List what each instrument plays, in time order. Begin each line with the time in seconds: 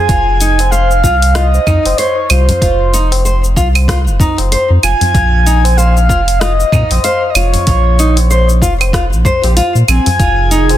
Already playing: soft synth lead G#5
0.09 sub bass F1, nylon-string guitar F4, kick, open hi-hat, shaker
0.41 nylon-string guitar D#4, open hi-hat, shaker
0.59 open hi-hat, tabla na, shaker
0.71 nylon-string guitar C5, soft synth lead F5, shaker
0.91 shaker
1.04 sub bass C2, nylon-string guitar F4, kick, tabla tin, shaker
1.22 open hi-hat, shaker
1.35 nylon-string guitar F4, soft synth lead D#5, cross-stick, open hi-hat, shaker
1.54 tabla tin, shaker
1.67 sub bass F2, nylon-string guitar D#4, kick, tabla tin, tabla ge, claves, shaker
1.86 sub bass F1, open hi-hat, tabla na, shaker
1.97 nylon-string guitar C5, soft synth lead C#5, open hi-hat, shaker
2.30 sub bass C2, nylon-string guitar F4, soft synth lead C5, open hi-hat, claves, shaker
2.49 open hi-hat, tabla ge, shaker
2.62 sub bass F1, nylon-string guitar F4, kick, open hi-hat, shaker
2.94 nylon-string guitar D#4, open hi-hat, shaker
3.12 open hi-hat, tabla na, shaker
3.25 nylon-string guitar C5, shaker
3.44 shaker
3.56 sub bass C2, nylon-string guitar F4, kick, tabla tin, shaker
3.75 open hi-hat, tabla na, claves, shaker
3.88 nylon-string guitar F4, kick, cross-stick, open hi-hat, shaker
4.07 sub bass F1, shaker
4.20 nylon-string guitar D#4, kick, tabla tin, tabla ge, shaker
4.38 sub bass F1, open hi-hat, tabla na, shaker
4.52 nylon-string guitar C5, open hi-hat, shaker
4.70 sub bass F2
4.83 sub bass F1, nylon-string guitar F4, soft synth lead G#5, open hi-hat, claves, shaker
5.01 open hi-hat, tabla ge, shaker
5.14 sub bass A#1, nylon-string guitar F4, kick, open hi-hat, shaker
5.46 nylon-string guitar D#4, open hi-hat, shaker
5.64 open hi-hat, tabla na, shaker
5.77 nylon-string guitar C5, soft synth lead F5, shaker
5.97 shaker
6.09 sub bass F1, nylon-string guitar F4, kick, tabla tin, shaker
6.28 open hi-hat, shaker
6.39 nylon-string guitar F4, soft synth lead D#5, cross-stick, open hi-hat, shaker
6.60 tabla tin, shaker
6.72 sub bass A#2, nylon-string guitar D#4, kick, tabla tin, tabla ge, claves, shaker
6.91 sub bass A#1, open hi-hat, tabla na, shaker
7.04 nylon-string guitar C5, soft synth lead F5, open hi-hat, shaker
7.30 soft synth lead D#5
7.34 sub bass F1, nylon-string guitar F4, soft synth lead C#5, open hi-hat, claves, shaker
7.53 open hi-hat, tabla ge, shaker
7.67 sub bass A#1, nylon-string guitar F4, kick, open hi-hat, shaker
7.99 nylon-string guitar D#4, open hi-hat, shaker
8.16 open hi-hat, tabla na, shaker
8.31 nylon-string guitar C5, shaker
8.49 shaker
8.62 sub bass F1, nylon-string guitar F4, kick, tabla tin, shaker
8.81 open hi-hat, tabla na, claves, shaker
8.93 nylon-string guitar F4, kick, cross-stick, open hi-hat, shaker
9.12 sub bass A#1, shaker
9.25 nylon-string guitar C5, kick, tabla tin, tabla ge, shaker
9.43 sub bass A#1, nylon-string guitar G4, open hi-hat, tabla na, shaker
9.57 nylon-string guitar F4, open hi-hat, shaker
9.75 sub bass A#2, shaker
9.88 sub bass A#1, nylon-string guitar C4, soft synth lead G#5, open hi-hat, claves, shaker
10.06 open hi-hat, tabla na, tabla ge, shaker
10.19 sub bass F1, analog synth pad C3 D#3 F4 G#4, nylon-string guitar F4, kick, open hi-hat, shaker
10.51 nylon-string guitar D#4, open hi-hat, shaker
10.69 open hi-hat, tabla na, shaker